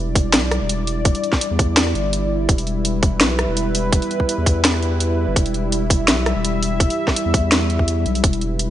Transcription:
Already playing: E1 G3 E4 D5
0.15 kick, open hi-hat
0.33 B1, snare, closed hi-hat
0.51 cross-stick, closed hi-hat
0.61 E1
0.69 closed hi-hat
0.87 open hi-hat
1.05 kick, closed hi-hat
1.15 open hi-hat
1.24 closed hi-hat
1.33 kick, snare
1.41 closed hi-hat
1.51 E2
1.59 kick, open hi-hat
1.77 snare, closed hi-hat
1.87 cross-stick
1.95 G1, closed hi-hat
2.13 closed hi-hat
2.48 E1 B4, kick, closed hi-hat
2.58 open hi-hat
2.67 closed hi-hat
2.85 closed hi-hat
3.03 kick, open hi-hat
3.21 B1, snare, closed hi-hat
3.39 cross-stick, closed hi-hat
3.48 E1
3.57 closed hi-hat
3.75 open hi-hat
3.92 kick, closed hi-hat
4.02 open hi-hat
4.11 closed hi-hat
4.20 kick
4.29 closed hi-hat
4.38 E2
4.46 kick, open hi-hat
4.65 snare, closed hi-hat
4.74 cross-stick
4.83 closed hi-hat
5.00 closed hi-hat
5.28 G1
5.36 E1 E5, kick, closed hi-hat
5.46 open hi-hat
5.54 closed hi-hat
5.72 closed hi-hat
5.90 kick, open hi-hat
6.08 B1, snare, closed hi-hat
6.26 cross-stick, closed hi-hat
6.36 E1
6.45 closed hi-hat
6.63 open hi-hat
6.80 kick, closed hi-hat
6.90 open hi-hat
7.07 kick, cross-stick, snare
7.16 closed hi-hat
7.26 E2
7.34 kick, open hi-hat
7.52 snare, closed hi-hat
7.70 closed hi-hat
7.79 kick
7.88 closed hi-hat
8.06 B1, closed hi-hat
8.15 open hi-hat
8.24 E1 B4, kick, closed hi-hat
8.33 open hi-hat
8.41 closed hi-hat
8.59 closed hi-hat

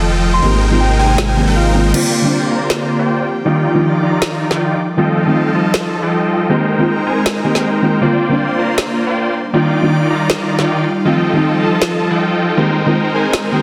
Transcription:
Already playing: F1 D#3 F3 A3 C4 D#4 F4 A4 D#5 G5
0.33 C6
0.41 G#1 C3 D#3 G#3 A#3 C4 D#4 G4 A#4 C5 G5
0.70 D#3 G#3 A#3 C4 F4
0.80 G5
0.99 G#3 D#4 A#4 C5 G5 G#5
1.18 snare
1.28 G5
1.36 D#3 G#3 A#3 C4 G4
1.47 G#3 D#4 A#4 C5 G5
1.56 F5
1.74 D#3 G#3 A#3 C4 F4
1.93 D3 G3 A#3 C4 F4 G4 C5 D5 G5, crash
2.21 D3 G3 A#3 C4
2.25 D4
2.51 A#3 F4 C5 D5 A#5
2.70 snare
2.99 A#3 F4 C5 D5 G5
3.27 F3 D#4 D5
3.45 D#3 G3 A#3 D4 D#4 F4 D5 G5
3.74 D#3 G3 A#3 D4 F4
4.03 D#3 D#4 F4 D5 A#5
4.22 snare
4.51 D#3 D#4 F4 D5 G5, snare
4.79 G3 D#4 F4 A4
4.97 D#3 F3 G3 A3 C4 F4 A4 D#5 G5
5.25 D#3 G3 A3 C4 D#4
5.55 F3 F4 A4 D#5 A5
5.74 snare
6.03 F3 F4 A4 D#5 G5
6.49 D#3 G#3 A#3 C4 D#4 G4 A#4 C5 G5
6.78 D#3 G#3 A#3 C4 F4
7.07 G#3 D#4 A#4 C5 G#5
7.26 snare
7.44 D#3 G#3 A#3 C4 D#4 G4 A#4 C5 G5
7.55 snare
7.82 D#3 G#3 A#3 C4 F4
8.01 D3 G3 A#3 C4 D4 F4 C5 D5 G5
8.29 D3 G3 A#3 C4 D4
8.59 A#3 F4 C5 D5 A#5
8.78 snare
9.07 A#3 F4 C5 D5 G5
9.35 G3 D#4 F4 D5
9.53 D#3 G3 A#3 D4 D#4 F4 D5 G5
9.82 D#3 G3 A#3 D4 F4
10.10 D#3 D#4 F4 D5 A#5
10.30 snare
10.59 D#3 D#4 F4 D5 G5, snare
10.87 A4
11.05 D#3 F3 G3 A3 C4 F4 A4 D#5 G5
11.33 D#3 G3 A3 C4 D#4
11.62 F3 F4 A4 D#5 A5
11.82 snare
12.11 F3 F4 A4 D#5 G5
12.57 D#3 G#3 A#3 C4 D#4 G4 A#4 C5 G5
12.86 D#3 G#3 A#3 C4 F4
13.14 G#3 D#4 A#4 C5 G#5
13.33 snare
13.52 D#3 G#3 A#3 C4 D#4 G4 A#4 C5 G5

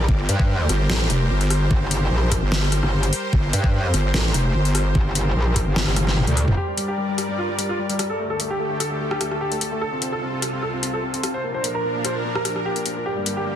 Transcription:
Already playing: G3 G4 A#4
0.09 G1 C5, kick
0.29 G2, closed hi-hat
0.40 kick
0.69 G1, cross-stick, closed hi-hat
0.90 A1, snare
1.10 F1, closed hi-hat
1.30 G1
1.41 closed hi-hat
1.50 cross-stick, open hi-hat
1.71 G1, kick
1.91 closed hi-hat
2.11 A#1
2.32 kick, cross-stick, closed hi-hat
2.42 G1
2.52 snare
2.63 cross-stick
2.72 cross-stick, closed hi-hat
2.83 G1, cross-stick
3.03 closed hi-hat
3.13 open hi-hat
3.33 G1, kick
3.53 G2, closed hi-hat
3.64 kick
3.94 G1, cross-stick, closed hi-hat
4.14 A1, snare
4.34 F1, closed hi-hat
4.55 G1
4.65 closed hi-hat
4.75 cross-stick, open hi-hat
4.95 G1, kick
5.15 closed hi-hat
5.36 A#1
5.56 kick, cross-stick, closed hi-hat
5.67 G1
5.76 snare
5.87 G1, cross-stick
5.96 cross-stick, closed hi-hat, high tom
6.07 cross-stick, snare
6.17 mid tom
6.27 D2, closed hi-hat, mid tom
6.37 open hi-hat
6.48 F1, mid tom
6.57 G2 G3 G4 A#4 D5
6.68 G3
6.77 G3, closed hi-hat
6.88 G4
6.98 G3
7.08 G3
7.18 cross-stick, closed hi-hat
7.29 G3
7.38 F4
7.49 G3
7.59 G3, closed hi-hat
7.69 F4
7.79 G3
7.89 G3, closed hi-hat
7.99 G3, cross-stick, closed hi-hat
8.10 A4
8.19 D2 D3 A3 G4 A4
8.30 A4
8.40 A3, closed hi-hat
8.50 G4
8.60 A3
8.70 A3
8.80 A4, cross-stick, closed hi-hat
8.91 A3
9.00 A3
9.11 G4, cross-stick
9.21 A3, cross-stick, closed hi-hat
9.31 A3, cross-stick
9.41 G4
9.52 A3, closed hi-hat
9.61 A3, closed hi-hat
9.72 A3
9.81 C2 C3 F4 A4
9.92 C4
10.02 C4, closed hi-hat
10.12 A4
10.22 C4
10.33 C4
10.42 cross-stick, closed hi-hat
10.53 C4
10.63 A4
10.73 C4
10.83 C4, closed hi-hat
10.93 A4
11.03 C4
11.14 C4, closed hi-hat
11.23 C4, cross-stick, closed hi-hat
11.34 C5
11.44 A#2 F3 A#3 D4 A#4
11.54 C5
11.64 A#3, closed hi-hat
11.75 A#4
11.84 A#3
11.95 A#3
12.05 C5, cross-stick, closed hi-hat
12.15 A#3
12.25 A#3
12.35 A#4, cross-stick
12.45 A#3, cross-stick, closed hi-hat
12.56 A#3, cross-stick
12.65 G4
12.76 A#3, closed hi-hat
12.86 A#3, closed hi-hat
12.96 A#3
13.06 G2 D3 A#3 G4
13.17 G3
13.26 G3, closed hi-hat
13.37 G4
13.46 G3

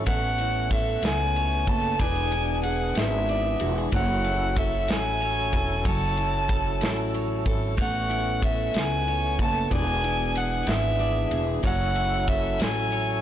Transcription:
Already playing: C#4 E4 A4
0.06 A1 A3 B3 C#5 F#5, kick, ride
0.38 E4, ride
0.71 A4 E5, kick, ride
1.02 C#2 E4 G#5, snare, ride
1.36 C#5, ride
1.67 F#1 A4 A5, kick, ride
1.99 E1 E3 D4 G#4 D5 G#5, kick, ride
2.32 E4, ride
2.63 G#4 F#5, ride
2.95 G#1 E4 E5, snare, ride
3.29 D5, ride
3.60 E1 F#4, ride
3.78 G#4
3.92 F#1 F#3 C#4 E4 A4 C#5 F#5, kick, ride
4.24 E4, ride
4.56 A4 E5, kick, ride
4.88 A1 E4 G#5, snare, ride
5.21 C#5, ride
5.53 E1 A4, kick, ride
5.85 F#1 F#3 C#5 A5, kick, ride
6.17 E4, ride
6.49 A4, kick, ride
6.81 A1 E4, snare, ride
7.14 C#5, ride
7.46 G#1 A4, kick, ride
7.77 A1 A3 B3 C#5, kick, ride
7.81 F#5
8.09 E4, ride
8.42 A4 E5, kick, ride
8.74 C#2 E4 G#5, snare, ride
9.08 C#5, ride
9.39 F#1 A4 A5, kick, ride
9.70 E1 E3 B3 D4 G#4 D5 G#5, kick, ride
10.04 E4, ride
10.35 G#4 F#5, ride
10.67 G#1 E4 E5, snare, ride
10.99 D5, ride
11.31 E1 G#4, ride
11.63 F#1 F#3 C#4 E4 A4 C#5 F#5, kick, ride
11.95 E4, ride
12.27 A4 E5, kick, ride
12.59 A1 E4 G#5, snare, ride
12.92 C#5, ride

